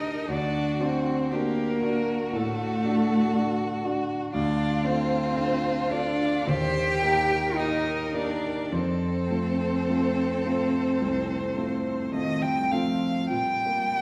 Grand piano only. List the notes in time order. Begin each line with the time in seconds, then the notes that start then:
Already playing: D2 D4 G4 A#4
0.28 D2
0.80 D4 F#4 D5
1.32 D4 F#4 D5
1.82 D4 F#4 D5
2.33 A2
2.84 D4 F#4 D5
3.34 D4 F#4 D5
3.84 D4 F#4 D5
4.34 D2
4.86 D4 F4 A4
5.37 D4 F4 A4
5.90 D4 F4 A4
6.47 D#2
7.02 A#3 D#4 G4
7.58 A#3 D#4 G4
8.14 A#3 D#4 G4
8.72 F2
9.30 A3 C4 F4
9.88 A3 C4 F4
10.45 A3 C4 F4
11.02 C2
11.57 A3 C4 F4
12.13 A3 C4 F4
12.72 A3 C4 F4
13.30 A#2
13.66 A#3